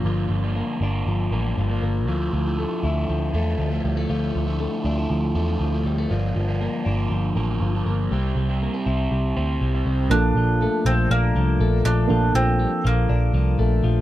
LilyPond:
<<
  \new Staff \with { instrumentName = "Synth keys" } { \time 4/4 \key bes \lydian \tempo 4 = 119 r1 | r1 | r1 | r1 |
r1 | <bes d' f' a'>1 | <bes d' f' a'>1 | }
  \new Staff \with { instrumentName = "Mandolin" } { \time 4/4 \key bes \lydian r1 | r1 | r1 | r1 |
r1 | d'4. c'8 bes4. d'8~ | d'8 c'4 bes2 r8 | }
  \new Staff \with { instrumentName = "Clean electric guitar" } { \clef bass \time 4/4 \key bes \lydian <f bes d'>8 f8 bes8 d'8 f8 bes8 f8 bes8 | f8 f8 a8 e'8 f8 a8 f8 g16 a16 | f8 f8 a8 d'16 e'16 f8 a8 f8 g16 a16 | f8 f8 bes8 d'8 f8 bes8 f8 bes8 |
g8 g8 bes16 c'16 e'8 g8 c'8 g8 c'8 | f8 f8 a8 f8 d'8 f8 a8 f8 | f8 f8 g16 r16 f8 d'8 f8 a8 f8 | }
  \new Staff \with { instrumentName = "Overdriven electric guitar" } { \clef bass \time 4/4 \key bes \lydian <g, d f bes d'>8. <g, d f bes d'>8. <d f bes d'>4 <g, d f bes d'>8. <f bes d'>8. | <d f a e'>8. <d f a e'>8. <d f a e'>4 <d f a e'>8. <f a e'>8. | <d f a e'>8. <d f a e'>8. <d f a e'>4 <d f a e'>8. <f a e'>8. | <g, d f bes d'>8. <g, d f bes d'>8. <d f bes d'>4 <g, d f bes d'>8. <f bes d'>8. |
<c g c' e'>8. <c g c' e'>8. <c g c' e'>4 <c g c' e'>8. <g c' e'>8. | r1 | r1 | }
  \new Staff \with { instrumentName = "Picked electric bass" } { \clef bass \time 4/4 \key bes \lydian g,,8 g,,8. r16 g,,8 g,,8 a,,8 g,,8 g,,8 | d,8 d,8. r16 d,8 d,8 e,8 d,8 d,8 | d,8 d,8. r16 d,8 d,8 e,8 d,8 d,8 | g,,8 g,,8. r16 g,,8 g,,8 a,,8 g,,8 g,,8 |
c,8 c,8. r16 c,8 c,8 d,8 c,8 c,8 | bes,,8 bes,,8. r16 bes,,8 bes,,8 c,8 bes,,8 bes,,8 | bes,,8 bes,,8. r16 bes,,8 bes,,8 c,8 bes,,8 bes,,8 | }
>>